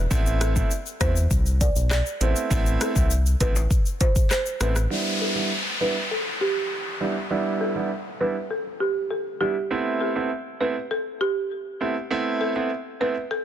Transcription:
0.11 analog synth bass A1, grand piano A3 B3 C4 E4, kick, shaker
0.26 shaker
0.41 marimba A4, cross-stick, closed hi-hat, shaker
0.56 grand piano A3 B3 C4 E4, kick, shaker
0.71 shaker
0.86 shaker
1.01 analog synth bass E2, grand piano A3 B3 C4 E4, marimba C5, kick, cross-stick, closed hi-hat, shaker
1.16 shaker
1.31 analog synth bass C2, kick, shaker
1.46 shaker
1.61 marimba D5, kick, closed hi-hat, shaker
1.76 analog synth bass B1, shaker
1.91 marimba D5, cross-stick, clap, shaker
2.06 shaker
2.21 analog synth bass A1, grand piano A3 B3 C4 E4, marimba C5, closed hi-hat, shaker
2.36 shaker
2.50 analog synth bass A1, grand piano A3 B3 C4 E4, kick, shaker
2.66 shaker
2.81 marimba A4, cross-stick, closed hi-hat, shaker
2.95 analog synth bass C2, grand piano A3 B3 C4 E4, kick, shaker
3.11 shaker
3.26 shaker
3.40 analog synth bass A1, grand piano A3 B3 C4 E4, marimba B4, kick, closed hi-hat, shaker
3.56 high timbale, shaker
3.71 kick, shaker
3.86 shaker
4.01 marimba C5, kick, closed hi-hat, high timbale, shaker
4.16 kick, shaker
4.31 marimba C5, cross-stick, clap, shaker
4.46 shaker
4.61 analog synth bass A1, grand piano A3 B3 C4 E4, marimba B4, cross-stick, closed hi-hat, shaker
4.76 cross-stick, shaker
4.90 grand piano G3 B3 D4 E4, downlifter
5.21 marimba A4
5.35 grand piano G3 B3 D4 E4
5.80 grand piano G3 B3 D4 E4, marimba B4
6.11 marimba A4
6.41 marimba G4
7.00 grand piano G3 B3 D4 E4
7.30 grand piano G3 B3 D4 E4
7.61 marimba A4
7.75 grand piano G3 B3 D4 E4
8.21 grand piano G3 B3 D4 E4, marimba B4
8.51 marimba A4
8.80 marimba G4
9.11 marimba A4
9.40 grand piano G3 B3 D4 E4, marimba G4
9.71 grand piano A3 B3 C4 E4
10.01 marimba A4
10.15 grand piano A3 B3 C4 E4
10.60 grand piano A3 B3 C4 E4, marimba B4
10.91 marimba A4
11.21 marimba G4
11.81 grand piano A3 B3 C4 E4
12.11 grand piano A3 B3 C4 E4
12.41 marimba A4
12.55 grand piano A3 B3 C4 E4
13.01 grand piano A3 B3 C4 E4, marimba B4
13.31 marimba A4

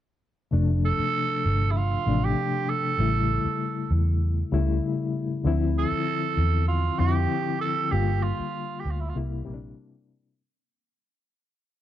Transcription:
0.51 fingered electric bass F1, reed electric piano C3 F3 A3 D4
0.85 tenor saxophone A4
0.99 muted fingered electric bass stroke
1.45 fingered electric bass G1
1.71 tenor saxophone E4
1.77 tenor saxophone F4
2.06 fingered electric bass A1, reed electric piano C3 F3 A3 D4
2.25 tenor saxophone G4
2.69 tenor saxophone A4
2.98 fingered electric bass A1, reed electric piano C#3 G3 A3 E4
3.45 muted fingered electric bass stroke
3.91 fingered electric bass E2
4.52 fingered electric bass C#2, reed electric piano C#3 G3 A3 E4
5.44 fingered electric bass D2, reed electric piano D3 F3 C4 E4
5.79 tenor saxophone A4
5.92 muted fingered electric bass stroke
6.37 fingered electric bass E2
6.68 tenor saxophone F4
6.98 fingered electric bass F2, reed electric piano D3 F3 C4 E4, tenor saxophone G4
7.61 tenor saxophone A4
7.91 fingered electric bass G1, reed electric piano D3 G3 A#3 F4, tenor saxophone G4
8.23 tenor saxophone F4
8.39 muted fingered electric bass stroke
8.80 tenor saxophone G4
8.85 fingered electric bass D2
8.90 tenor saxophone F4
9.00 tenor saxophone E4
9.09 tenor saxophone F4
9.14 fingered electric bass C2, reed electric piano C3 G3 A#3 E4
9.44 fingered electric bass A#1, reed electric piano C3 G3 A#3 C4
9.54 reed electric piano D4

